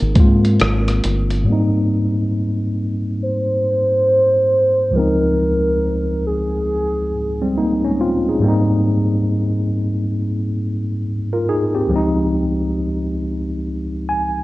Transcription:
0.00 0.16 G#1 medium
0.00 1.43 C3 medium
0.00 0.11 G#3 medium
0.00 0.13 A#3 medium
0.00 1.43 A#3 medium
0.00 0.14 C4 medium
0.00 1.43 C4 medium
0.00 0.15 D#4 medium
0.00 0.57 G#4 medium
0.00 1.43 A#4 medium
0.00 closed hi-hat soft
0.15 0.58 G#2 loud
0.15 1.47 G#3 medium
0.15 1.47 A#3 medium
0.15 1.48 C4 medium
0.15 kick loud
0.15 closed hi-hat medium
0.20 1.49 F4 medium
0.45 closed hi-hat soft
0.60 1.02 G#1 loud
0.60 cross-stick medium
0.60 closed hi-hat medium
0.88 cross-stick soft
0.88 closed hi-hat soft
1.04 1.45 G1 medium
1.04 closed hi-hat medium
1.31 closed hi-hat medium
1.44 4.89 G#2 medium
1.44 4.90 G3 medium
1.48 4.92 A#3 medium
1.48 4.93 C4 soft
1.53 4.94 D#4 medium
3.22 4.97 C5 loud
4.91 8.37 C#2 medium
4.91 8.38 F3 medium
4.95 7.08 G#3 medium
4.95 7.10 C4 medium
4.95 6.26 A#4 loud
4.99 7.11 D#4 medium
6.27 7.96 G#4 medium
7.41 7.56 G3 medium
7.41 7.56 C4 medium
7.58 7.83 A#3 medium
7.58 7.83 D#4 medium
7.85 7.99 G#3 soft
7.85 7.99 C#4 medium
8.01 8.27 C4 medium
8.01 8.26 F4 medium
8.29 8.47 D#4 soft
8.29 8.69 G#4 soft
8.39 11.85 G#2 medium
8.39 11.86 G3 medium
8.44 11.87 A#3 medium
8.44 11.01 C4 medium
8.48 11.02 D#4 medium
11.33 11.47 F4 medium
11.33 11.47 A#4 medium
11.49 11.75 D#4 medium
11.49 11.74 G#4 medium
11.75 11.92 C4 medium
11.75 12.16 G4 medium
11.87 14.44 C#2 medium
11.87 14.44 F3 medium
11.91 14.44 G#3 medium
11.91 14.44 C4 medium
11.95 14.44 D#4 medium
14.09 14.44 G#5 medium

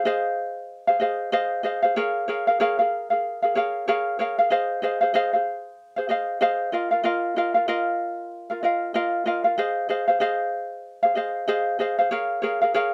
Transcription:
0.05 0.89 G#4 medium
0.05 0.87 C5 medium
0.05 0.88 D#5 medium
0.05 0.87 F5 loud
0.87 1.00 G#4 soft
0.87 0.99 C5 medium
0.87 1.00 F5 medium
1.00 1.32 G#4 medium
1.00 1.32 C5 medium
1.00 1.31 D#5 medium
1.00 1.32 F5 medium
1.32 1.63 G#4 medium
1.32 1.63 C5 medium
1.32 1.62 D#5 medium
1.32 1.64 F5 medium
1.63 1.83 G#4 medium
1.63 1.83 C5 medium
1.63 1.83 D#5 medium
1.63 1.81 F5 medium
1.82 1.95 G#4 soft
1.82 1.97 C5 medium
1.82 1.96 F5 medium
1.96 2.27 G#4 medium
1.96 2.28 A#4 medium
1.96 2.27 C#5 medium
1.96 2.29 F5 medium
2.28 2.48 G#4 medium
2.28 2.47 A#4 medium
2.28 2.47 C#5 medium
2.28 2.46 F5 medium
2.47 2.59 G#4 soft
2.47 2.60 A#4 medium
2.47 2.60 F5 medium
2.60 2.79 G#4 medium
2.60 2.78 A#4 medium
2.60 2.79 C#5 loud
2.60 2.78 F5 medium
2.79 3.11 G#4 soft
2.79 3.10 A#4 medium
2.79 3.09 F5 medium
3.10 3.43 G#4 soft
3.10 3.42 A#4 soft
3.10 3.41 F5 medium
3.42 3.55 G#4 soft
3.42 3.56 A#4 medium
3.42 3.55 F5 medium
3.55 3.87 G#4 medium
3.55 3.87 A#4 medium
3.55 3.86 C#5 medium
3.55 3.88 F5 medium
3.88 4.18 G#4 medium
3.88 4.19 A#4 medium
3.88 4.18 C#5 medium
3.88 4.20 F5 medium
4.19 4.38 G#4 medium
4.19 4.39 A#4 medium
4.19 4.38 C#5 medium
4.19 4.37 F5 medium
4.39 4.50 G#4 medium
4.39 4.51 A#4 medium
4.39 4.51 F5 medium
4.50 4.82 G#4 medium
4.50 4.82 C5 medium
4.50 4.81 D#5 medium
4.50 4.83 F5 medium
4.82 5.02 G#4 medium
4.82 5.01 C5 medium
4.82 5.01 D#5 medium
4.82 5.00 F5 medium
5.01 5.14 G#4 soft
5.01 5.14 C5 medium
5.01 5.14 F5 medium
5.14 5.34 G#4 loud
5.14 5.34 C5 medium
5.14 5.33 D#5 medium
5.14 5.32 F5 loud
5.33 5.97 G#4 soft
5.33 5.97 C5 soft
5.33 5.96 F5 medium
5.96 6.08 G#4 soft
5.96 6.09 C5 medium
5.96 6.08 F5 medium
6.09 6.40 G#4 medium
6.09 6.41 C5 medium
6.09 6.40 D#5 medium
6.09 6.41 F5 medium
6.41 6.72 G#4 medium
6.41 6.73 C5 medium
6.41 6.71 D#5 medium
6.41 6.73 F5 medium
6.72 6.92 F4 medium
6.72 6.91 A#4 medium
6.72 6.92 D#5 medium
6.72 6.90 F5 medium
6.91 7.03 F4 soft
6.91 7.04 A#4 medium
6.91 7.04 F5 medium
7.04 7.35 F4 medium
7.04 7.36 A#4 medium
7.04 7.35 D#5 medium
7.04 7.36 F5 medium
7.36 7.55 F4 medium
7.36 7.55 A#4 medium
7.36 7.55 D#5 medium
7.36 7.53 F5 medium
7.54 7.67 F4 soft
7.54 7.67 A#4 soft
7.54 7.67 F5 medium
7.68 8.51 F4 medium
7.68 8.50 A#4 medium
7.68 8.49 D#5 medium
7.68 8.50 F5 loud
8.50 8.62 F4 soft
8.50 8.63 A#4 soft
8.50 8.63 F5 medium
8.63 8.94 F4 medium
8.63 8.94 A#4 medium
8.63 8.93 D#5 medium
8.63 8.94 F5 medium
8.94 9.25 F4 medium
8.94 9.26 A#4 medium
8.94 9.24 D#5 medium
8.94 9.26 F5 medium
9.26 9.45 F4 medium
9.26 9.44 A#4 medium
9.26 9.45 D#5 medium
9.26 9.43 F5 medium
9.44 9.58 F4 soft
9.44 9.58 A#4 soft
9.44 9.57 F5 medium
9.58 9.88 G#4 medium
9.58 9.89 C5 medium
9.58 9.88 D#5 medium
9.58 9.89 F5 medium
9.89 10.08 G#4 medium
9.89 10.08 C5 medium
9.89 10.08 D#5 medium
9.89 10.06 F5 medium
10.08 10.20 G#4 soft
10.08 10.20 C5 medium
10.08 10.20 F5 medium
10.20 11.05 G#4 medium
10.20 11.03 C5 medium
10.20 11.03 D#5 medium
10.20 11.02 F5 medium
11.03 11.15 G#4 soft
11.03 11.15 C5 medium
11.03 11.16 F5 medium
11.15 11.47 G#4 medium
11.15 11.47 C5 medium
11.15 11.46 D#5 medium
11.15 11.48 F5 medium
11.48 11.79 G#4 medium
11.48 11.79 C5 medium
11.48 11.78 D#5 medium
11.48 11.80 F5 loud
11.79 11.99 G#4 medium
11.79 11.98 C5 medium
11.79 11.98 D#5 medium
11.79 11.97 F5 medium
11.99 12.10 G#4 medium
11.99 12.12 C5 medium
11.99 12.11 F5 medium
12.11 12.42 G#4 medium
12.11 12.42 A#4 medium
12.11 12.41 C#5 medium
12.11 12.43 F5 medium
12.42 12.62 G#4 medium
12.42 12.61 A#4 medium
12.42 12.61 C#5 medium
12.42 12.60 F5 medium
12.62 12.73 G#4 medium
12.62 12.74 A#4 medium
12.62 12.74 F5 medium
12.74 12.94 G#4 medium
12.74 12.94 A#4 medium
12.74 12.94 C#5 medium
12.74 12.94 F5 loud

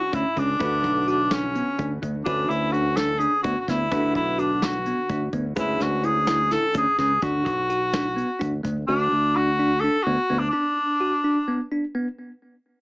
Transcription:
0.00 0.57 D3 medium
0.00 0.57 G#3 medium
0.00 0.57 C#4 medium
0.00 0.15 F#4 medium
0.00 0.58 B4 medium
0.13 0.23 D2 medium
0.13 0.25 C#4 medium
0.13 0.40 E4 medium
0.13 kick medium
0.13 closed hi-hat medium
0.37 0.56 C#2 medium
0.37 0.49 C#4 medium
0.37 1.08 D4 medium
0.37 kick medium
0.37 closed hi-hat medium
0.60 0.84 D2 medium
0.60 2.22 D3 medium
0.60 2.23 A3 medium
0.60 0.84 D4 medium
0.60 2.23 F#4 medium
0.60 2.23 B4 medium
0.60 kick loud
0.60 closed hi-hat medium
0.84 1.60 B1 medium
0.84 kick medium
0.84 closed hi-hat medium
1.08 1.34 D4 medium
1.08 1.20 F#4 medium
1.08 closed hi-hat medium
1.31 2.03 C#4 medium
1.31 1.44 D4 medium
1.31 snare loud
1.31 closed hi-hat medium
1.55 1.67 B3 medium
1.55 closed hi-hat medium
1.79 1.98 D2 medium
1.79 1.91 D4 medium
1.79 kick medium
1.79 closed hi-hat medium
2.02 2.21 D2 medium
2.02 2.14 A3 medium
2.02 kick medium
2.02 closed hi-hat medium
2.25 2.45 D2 medium
2.25 3.88 D3 medium
2.25 3.88 A3 medium
2.25 3.88 C#4 medium
2.25 2.50 D4 medium
2.25 2.50 F#4 medium
2.25 3.89 B4 medium
2.25 kick loud
2.25 closed hi-hat medium
2.49 3.25 D2 medium
2.49 2.73 E4 medium
2.49 closed hi-hat medium
2.72 2.85 D4 medium
2.72 2.98 F#4 medium
2.72 closed hi-hat medium
2.96 3.09 D4 medium
2.96 3.20 A4 medium
2.96 snare loud
2.96 closed hi-hat medium
3.19 3.32 D4 medium
3.19 3.42 G#4 medium
3.19 closed hi-hat medium
3.43 3.54 D2 medium
3.43 3.56 B3 medium
3.43 3.60 F#4 medium
3.43 kick medium
3.43 closed hi-hat medium
3.60 3.71 F#4 medium
3.68 3.87 D2 medium
3.68 3.80 B3 medium
3.68 4.15 E4 medium
3.68 kick medium
3.68 snare soft
3.68 closed hi-hat medium
3.91 4.15 D2 medium
3.91 5.53 D3 medium
3.91 5.54 A3 medium
3.91 4.16 D4 medium
3.91 5.54 F#4 medium
3.91 5.54 B4 medium
3.91 kick loud
3.91 closed hi-hat medium
4.15 4.91 B1 medium
4.15 4.41 E4 medium
4.15 kick medium
4.15 closed hi-hat medium
4.38 4.65 D4 medium
4.38 4.50 F#4 medium
4.38 closed hi-hat medium
4.62 4.74 D4 medium
4.62 5.34 F#4 medium
4.62 snare loud
4.62 closed hi-hat medium
4.86 4.99 B3 medium
4.86 closed hi-hat medium
5.09 5.28 D2 medium
5.09 5.22 D4 medium
5.09 kick medium
5.09 closed hi-hat medium
5.33 5.52 D2 medium
5.33 5.45 B3 medium
5.33 kick medium
5.33 closed hi-hat medium
5.56 5.76 D2 medium
5.56 7.18 D3 medium
5.56 7.19 G#3 medium
5.56 7.18 C#4 medium
5.56 5.83 E4 medium
5.56 5.81 G#4 medium
5.56 7.19 B4 medium
5.56 kick loud
5.56 closed hi-hat medium
5.56 shaker medium
5.80 6.56 D2 medium
5.80 6.07 F#4 medium
5.80 snare soft
5.80 closed hi-hat medium
6.03 6.16 E4 medium
6.03 6.54 G#4 medium
6.03 closed hi-hat medium
6.27 6.39 E4 medium
6.27 snare loud
6.27 closed hi-hat medium
6.27 shaker soft
6.51 6.63 E4 medium
6.51 6.75 A4 medium
6.51 snare soft
6.51 closed hi-hat medium
6.74 6.84 D2 medium
6.74 6.87 C#4 medium
6.74 6.98 G#4 medium
6.74 kick medium
6.74 closed hi-hat medium
6.74 shaker soft
6.98 7.17 C#2 medium
6.98 7.11 C#4 medium
6.98 7.21 G#4 medium
6.98 kick medium
6.98 snare soft
6.98 closed hi-hat medium
7.22 7.46 D2 medium
7.22 7.47 D4 medium
7.22 8.60 F#4 medium
7.22 kick loud
7.22 closed hi-hat medium
7.46 8.22 B1 medium
7.46 kick medium
7.46 closed hi-hat medium
7.70 7.82 F#4 medium
7.70 closed hi-hat medium
7.93 8.06 D4 medium
7.93 snare loud
7.93 closed hi-hat medium
8.16 8.29 B3 medium
8.16 closed hi-hat medium
8.39 8.59 D2 medium
8.39 8.52 D4 medium
8.39 kick loud
8.39 closed hi-hat medium
8.63 8.83 D2 medium
8.63 8.76 A3 medium
8.63 kick medium
8.63 closed hi-hat medium
8.87 9.07 D2 medium
8.87 9.37 D4 medium
8.87 9.12 F#4 medium
9.12 9.87 D2 medium
9.36 9.48 D4 medium
9.36 9.82 F#4 medium
9.59 9.71 D4 medium
9.80 9.96 D4 medium
9.80 10.04 A4 medium
10.03 10.16 D2 medium
10.03 10.19 B3 medium
10.03 10.40 F#4 medium
10.30 10.49 D2 medium
10.30 10.42 B3 medium
10.38 10.49 D4 medium
10.50 11.66 D4 medium
10.50 10.77 D4 medium
11.00 11.13 F#4 medium
11.24 11.36 D4 medium
11.48 11.60 B3 medium
11.71 11.83 D4 medium
11.95 12.07 B3 medium

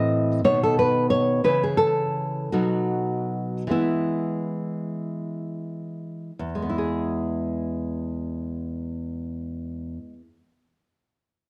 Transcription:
0.00 0.41 A2 medium
0.00 0.40 E3 medium
0.00 0.41 C4 medium
0.00 0.41 D#5 loud
0.44 1.42 B2 medium
0.44 1.41 D#3 medium
0.44 1.41 B3 medium
0.44 0.61 C#5 loud
0.63 0.78 A4 medium
0.79 1.10 B4 loud
1.10 1.43 C#5 medium
1.44 2.49 C#3 medium
1.44 2.48 E3 medium
1.44 2.49 E4 medium
1.44 1.62 B4 medium
1.63 1.80 G#4 medium
1.77 2.48 A4 medium
2.52 3.69 B2 medium
2.52 3.67 F#3 medium
2.52 3.69 D#4 soft
2.52 3.68 F#4 medium
3.67 6.30 E3 medium
3.67 6.31 G#3 soft
3.67 6.32 B3 soft
3.71 5.87 E4 medium
6.39 9.97 E2 medium
6.55 10.13 G#3 soft
6.62 10.20 B3 soft
6.70 10.27 E4 soft
6.78 10.36 G#4 soft

